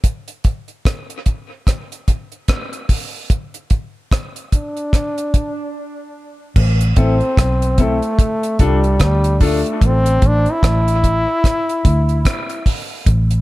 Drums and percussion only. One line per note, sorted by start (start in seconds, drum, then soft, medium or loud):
0.04 kick loud
0.04 closed hi-hat loud
0.28 closed hi-hat soft
0.44 kick loud
0.44 closed hi-hat medium
0.68 closed hi-hat soft
0.85 kick loud
0.85 cross-stick loud
0.85 closed hi-hat medium
1.10 closed hi-hat soft
1.26 kick medium
1.26 closed hi-hat medium
1.67 kick loud
1.67 cross-stick medium
1.67 closed hi-hat medium
1.92 closed hi-hat soft
2.08 kick medium
2.08 closed hi-hat medium
2.32 closed hi-hat soft
2.48 kick medium
2.48 cross-stick loud
2.48 closed hi-hat medium
2.73 closed hi-hat soft
2.89 kick medium
2.89 open hi-hat medium
3.30 kick loud
3.30 closed hi-hat medium
3.54 closed hi-hat soft
3.70 kick loud
3.70 closed hi-hat medium
4.12 kick loud
4.12 cross-stick loud
4.12 closed hi-hat medium
4.36 closed hi-hat soft
4.52 kick medium
4.52 closed hi-hat medium
4.77 closed hi-hat soft
4.93 kick loud
4.93 cross-stick medium
4.93 closed hi-hat medium
5.18 closed hi-hat soft
5.34 kick loud
5.34 closed hi-hat medium
6.56 kick loud
6.56 crash medium
6.81 closed hi-hat medium
6.96 kick loud
6.96 closed hi-hat medium
7.21 closed hi-hat soft
7.37 kick loud
7.37 cross-stick loud
7.37 closed hi-hat loud
7.62 closed hi-hat medium
7.78 kick loud
7.78 closed hi-hat medium
8.02 closed hi-hat soft
8.19 kick loud
8.19 closed hi-hat medium
8.43 closed hi-hat soft
8.59 kick loud
8.59 closed hi-hat medium
8.84 closed hi-hat soft
9.00 kick medium
9.00 cross-stick loud
9.00 closed hi-hat medium
9.24 closed hi-hat medium
9.40 kick loud
9.40 open hi-hat medium
9.66 closed hi-hat soft
9.81 kick loud
9.81 closed hi-hat loud
10.06 closed hi-hat medium
10.22 kick loud
10.22 closed hi-hat medium
10.46 closed hi-hat soft
10.63 kick loud
10.63 cross-stick loud
10.63 closed hi-hat medium
10.88 closed hi-hat medium
11.04 kick medium
11.04 closed hi-hat medium
11.44 kick loud
11.44 cross-stick medium
11.44 closed hi-hat medium
11.69 closed hi-hat soft
11.85 kick loud
11.85 closed hi-hat medium
12.09 closed hi-hat soft
12.25 kick loud
12.25 cross-stick loud
12.25 closed hi-hat medium
12.49 closed hi-hat soft
12.66 kick medium
12.66 open hi-hat loud
13.06 kick loud
13.06 closed hi-hat loud
13.31 closed hi-hat medium